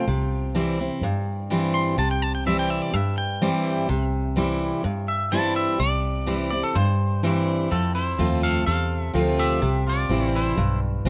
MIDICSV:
0, 0, Header, 1, 4, 480
1, 0, Start_track
1, 0, Key_signature, 0, "major"
1, 0, Tempo, 477707
1, 67, Time_signature, 4, 2, 24, 8
1, 11145, End_track
2, 0, Start_track
2, 0, Title_t, "Clean electric guitar"
2, 0, Program_c, 0, 27
2, 0, Note_on_c, 0, 79, 99
2, 1225, Note_off_c, 0, 79, 0
2, 1749, Note_on_c, 0, 84, 90
2, 1981, Note_off_c, 0, 84, 0
2, 1996, Note_on_c, 0, 81, 88
2, 2109, Note_off_c, 0, 81, 0
2, 2121, Note_on_c, 0, 79, 89
2, 2233, Note_off_c, 0, 79, 0
2, 2233, Note_on_c, 0, 81, 86
2, 2347, Note_off_c, 0, 81, 0
2, 2358, Note_on_c, 0, 79, 78
2, 2470, Note_off_c, 0, 79, 0
2, 2479, Note_on_c, 0, 76, 81
2, 2590, Note_off_c, 0, 76, 0
2, 2605, Note_on_c, 0, 79, 89
2, 2716, Note_off_c, 0, 79, 0
2, 2716, Note_on_c, 0, 76, 92
2, 2832, Note_off_c, 0, 76, 0
2, 2832, Note_on_c, 0, 74, 88
2, 2950, Note_off_c, 0, 74, 0
2, 2950, Note_on_c, 0, 76, 90
2, 3182, Note_off_c, 0, 76, 0
2, 3194, Note_on_c, 0, 79, 98
2, 4122, Note_off_c, 0, 79, 0
2, 5107, Note_on_c, 0, 76, 84
2, 5341, Note_off_c, 0, 76, 0
2, 5345, Note_on_c, 0, 81, 94
2, 5580, Note_off_c, 0, 81, 0
2, 5588, Note_on_c, 0, 76, 92
2, 5821, Note_off_c, 0, 76, 0
2, 5825, Note_on_c, 0, 74, 102
2, 6525, Note_off_c, 0, 74, 0
2, 6536, Note_on_c, 0, 74, 89
2, 6658, Note_off_c, 0, 74, 0
2, 6666, Note_on_c, 0, 69, 101
2, 6784, Note_off_c, 0, 69, 0
2, 6786, Note_on_c, 0, 72, 96
2, 7718, Note_off_c, 0, 72, 0
2, 7746, Note_on_c, 0, 60, 53
2, 7755, Note_on_c, 0, 69, 75
2, 7971, Note_off_c, 0, 60, 0
2, 7983, Note_off_c, 0, 69, 0
2, 7987, Note_on_c, 0, 72, 82
2, 7991, Note_on_c, 0, 64, 51
2, 8435, Note_off_c, 0, 64, 0
2, 8474, Note_on_c, 0, 77, 98
2, 8476, Note_off_c, 0, 72, 0
2, 8480, Note_on_c, 0, 69, 80
2, 8694, Note_off_c, 0, 77, 0
2, 8698, Note_off_c, 0, 69, 0
2, 8706, Note_on_c, 0, 77, 83
2, 8712, Note_on_c, 0, 69, 70
2, 9038, Note_off_c, 0, 77, 0
2, 9038, Note_on_c, 0, 76, 83
2, 9154, Note_off_c, 0, 76, 0
2, 9157, Note_off_c, 0, 69, 0
2, 9438, Note_on_c, 0, 67, 80
2, 9441, Note_on_c, 0, 76, 89
2, 9880, Note_off_c, 0, 67, 0
2, 9921, Note_on_c, 0, 65, 66
2, 9928, Note_off_c, 0, 76, 0
2, 9941, Note_on_c, 0, 74, 86
2, 10362, Note_off_c, 0, 65, 0
2, 10400, Note_off_c, 0, 74, 0
2, 10404, Note_on_c, 0, 64, 57
2, 10412, Note_on_c, 0, 72, 76
2, 10843, Note_off_c, 0, 64, 0
2, 10847, Note_off_c, 0, 72, 0
2, 11145, End_track
3, 0, Start_track
3, 0, Title_t, "Steel-string acoustic guitar"
3, 0, Program_c, 1, 25
3, 76, Note_on_c, 1, 48, 80
3, 550, Note_on_c, 1, 52, 83
3, 553, Note_on_c, 1, 55, 84
3, 557, Note_on_c, 1, 60, 77
3, 563, Note_on_c, 1, 64, 86
3, 779, Note_off_c, 1, 52, 0
3, 781, Note_off_c, 1, 55, 0
3, 783, Note_off_c, 1, 60, 0
3, 786, Note_off_c, 1, 64, 0
3, 797, Note_on_c, 1, 64, 62
3, 811, Note_on_c, 1, 60, 54
3, 984, Note_off_c, 1, 48, 0
3, 1023, Note_off_c, 1, 64, 0
3, 1030, Note_off_c, 1, 60, 0
3, 1036, Note_on_c, 1, 43, 90
3, 1510, Note_on_c, 1, 52, 81
3, 1515, Note_on_c, 1, 55, 84
3, 1520, Note_on_c, 1, 60, 88
3, 1525, Note_on_c, 1, 64, 84
3, 1944, Note_off_c, 1, 43, 0
3, 1965, Note_off_c, 1, 52, 0
3, 1968, Note_off_c, 1, 55, 0
3, 1970, Note_off_c, 1, 60, 0
3, 1973, Note_off_c, 1, 64, 0
3, 1988, Note_on_c, 1, 48, 79
3, 2472, Note_on_c, 1, 52, 78
3, 2482, Note_on_c, 1, 55, 86
3, 2482, Note_on_c, 1, 60, 89
3, 2487, Note_on_c, 1, 64, 83
3, 2900, Note_off_c, 1, 48, 0
3, 2926, Note_off_c, 1, 52, 0
3, 2931, Note_off_c, 1, 55, 0
3, 2931, Note_off_c, 1, 60, 0
3, 2934, Note_off_c, 1, 64, 0
3, 2952, Note_on_c, 1, 43, 92
3, 3431, Note_on_c, 1, 52, 92
3, 3436, Note_on_c, 1, 55, 89
3, 3438, Note_on_c, 1, 60, 91
3, 3443, Note_on_c, 1, 64, 98
3, 3862, Note_off_c, 1, 43, 0
3, 3886, Note_off_c, 1, 52, 0
3, 3888, Note_off_c, 1, 55, 0
3, 3889, Note_off_c, 1, 60, 0
3, 3892, Note_off_c, 1, 64, 0
3, 3907, Note_on_c, 1, 48, 89
3, 4380, Note_on_c, 1, 52, 75
3, 4388, Note_on_c, 1, 55, 81
3, 4389, Note_on_c, 1, 60, 84
3, 4399, Note_on_c, 1, 64, 83
3, 4820, Note_off_c, 1, 48, 0
3, 4840, Note_off_c, 1, 52, 0
3, 4845, Note_off_c, 1, 55, 0
3, 4845, Note_off_c, 1, 60, 0
3, 4850, Note_off_c, 1, 64, 0
3, 4863, Note_on_c, 1, 43, 87
3, 5345, Note_on_c, 1, 52, 82
3, 5351, Note_on_c, 1, 55, 98
3, 5358, Note_on_c, 1, 60, 95
3, 5361, Note_on_c, 1, 64, 94
3, 5778, Note_off_c, 1, 43, 0
3, 5803, Note_off_c, 1, 52, 0
3, 5806, Note_off_c, 1, 55, 0
3, 5809, Note_off_c, 1, 60, 0
3, 5811, Note_off_c, 1, 64, 0
3, 5828, Note_on_c, 1, 48, 90
3, 6294, Note_on_c, 1, 52, 81
3, 6301, Note_on_c, 1, 55, 96
3, 6304, Note_on_c, 1, 60, 80
3, 6310, Note_on_c, 1, 64, 92
3, 6529, Note_off_c, 1, 64, 0
3, 6532, Note_off_c, 1, 52, 0
3, 6535, Note_off_c, 1, 55, 0
3, 6537, Note_off_c, 1, 60, 0
3, 6542, Note_on_c, 1, 64, 59
3, 6555, Note_on_c, 1, 60, 50
3, 6740, Note_off_c, 1, 48, 0
3, 6775, Note_off_c, 1, 64, 0
3, 6782, Note_off_c, 1, 60, 0
3, 6789, Note_on_c, 1, 43, 92
3, 7266, Note_on_c, 1, 52, 80
3, 7272, Note_on_c, 1, 55, 93
3, 7276, Note_on_c, 1, 60, 86
3, 7280, Note_on_c, 1, 64, 98
3, 7701, Note_off_c, 1, 43, 0
3, 7723, Note_off_c, 1, 52, 0
3, 7726, Note_off_c, 1, 55, 0
3, 7728, Note_off_c, 1, 60, 0
3, 7730, Note_off_c, 1, 64, 0
3, 7748, Note_on_c, 1, 41, 77
3, 8221, Note_on_c, 1, 53, 73
3, 8228, Note_on_c, 1, 57, 81
3, 8230, Note_on_c, 1, 60, 82
3, 8237, Note_on_c, 1, 65, 90
3, 8660, Note_off_c, 1, 41, 0
3, 8681, Note_off_c, 1, 53, 0
3, 8684, Note_off_c, 1, 57, 0
3, 8685, Note_off_c, 1, 60, 0
3, 8689, Note_off_c, 1, 65, 0
3, 8710, Note_on_c, 1, 48, 79
3, 9179, Note_on_c, 1, 53, 84
3, 9188, Note_on_c, 1, 57, 86
3, 9191, Note_on_c, 1, 60, 94
3, 9197, Note_on_c, 1, 65, 87
3, 9621, Note_off_c, 1, 48, 0
3, 9640, Note_off_c, 1, 53, 0
3, 9644, Note_off_c, 1, 57, 0
3, 9646, Note_off_c, 1, 60, 0
3, 9649, Note_off_c, 1, 65, 0
3, 9662, Note_on_c, 1, 48, 81
3, 10139, Note_on_c, 1, 52, 72
3, 10148, Note_on_c, 1, 55, 70
3, 10153, Note_on_c, 1, 60, 87
3, 10157, Note_on_c, 1, 64, 83
3, 10577, Note_off_c, 1, 48, 0
3, 10600, Note_off_c, 1, 52, 0
3, 10604, Note_off_c, 1, 55, 0
3, 10607, Note_off_c, 1, 60, 0
3, 10609, Note_off_c, 1, 64, 0
3, 10625, Note_on_c, 1, 43, 85
3, 11106, Note_on_c, 1, 52, 83
3, 11112, Note_on_c, 1, 55, 92
3, 11145, Note_off_c, 1, 43, 0
3, 11145, Note_off_c, 1, 52, 0
3, 11145, Note_off_c, 1, 55, 0
3, 11145, End_track
4, 0, Start_track
4, 0, Title_t, "Fingered electric bass"
4, 0, Program_c, 2, 33
4, 76, Note_on_c, 2, 36, 88
4, 894, Note_off_c, 2, 36, 0
4, 1019, Note_on_c, 2, 43, 74
4, 1845, Note_off_c, 2, 43, 0
4, 1986, Note_on_c, 2, 36, 93
4, 2809, Note_off_c, 2, 36, 0
4, 2954, Note_on_c, 2, 43, 87
4, 3774, Note_off_c, 2, 43, 0
4, 3913, Note_on_c, 2, 36, 101
4, 4733, Note_off_c, 2, 36, 0
4, 4870, Note_on_c, 2, 43, 86
4, 5691, Note_off_c, 2, 43, 0
4, 5823, Note_on_c, 2, 36, 96
4, 6647, Note_off_c, 2, 36, 0
4, 6788, Note_on_c, 2, 43, 84
4, 7610, Note_off_c, 2, 43, 0
4, 7754, Note_on_c, 2, 41, 84
4, 8217, Note_off_c, 2, 41, 0
4, 8233, Note_on_c, 2, 39, 94
4, 8697, Note_off_c, 2, 39, 0
4, 8715, Note_on_c, 2, 40, 86
4, 9177, Note_off_c, 2, 40, 0
4, 9191, Note_on_c, 2, 38, 86
4, 9655, Note_off_c, 2, 38, 0
4, 9671, Note_on_c, 2, 36, 78
4, 10135, Note_off_c, 2, 36, 0
4, 10143, Note_on_c, 2, 33, 89
4, 10611, Note_off_c, 2, 33, 0
4, 10625, Note_on_c, 2, 35, 88
4, 11092, Note_off_c, 2, 35, 0
4, 11101, Note_on_c, 2, 36, 85
4, 11145, Note_off_c, 2, 36, 0
4, 11145, End_track
0, 0, End_of_file